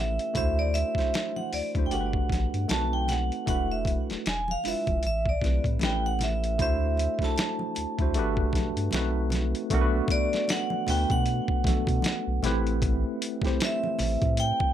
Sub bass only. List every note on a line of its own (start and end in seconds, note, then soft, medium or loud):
0.00 0.19 A1 loud
0.36 0.84 D2 loud
0.95 1.02 D2 medium
1.53 1.62 D2 soft
1.76 1.88 D2 medium
1.92 2.22 G1 medium
2.30 2.48 A1 medium
2.54 2.66 G2 loud
2.70 3.31 B1 medium
3.48 3.96 E1 medium
4.11 4.17 E1 soft
4.27 4.57 E1 loud
4.66 4.74 F1 soft
4.88 5.00 F1 medium
5.04 5.34 A1 loud
5.42 5.60 B1 medium
5.65 5.78 A2 medium
5.82 6.62 A1 medium
6.60 7.08 D2 loud
7.20 7.26 D2 medium
7.78 7.86 D2 soft
7.99 8.17 D2 medium
8.15 8.46 G1 loud
8.54 8.71 B1 loud
8.77 8.89 G2 medium
8.93 9.54 B1 loud
9.71 10.01 B1 loud
10.88 11.06 D2 medium
11.11 11.41 B2 loud
11.65 11.83 B1 medium
11.87 12.00 B2 loud
12.27 12.40 B1 medium
12.43 13.04 A1 loud
14.00 14.17 A1 loud
14.22 14.53 A2 medium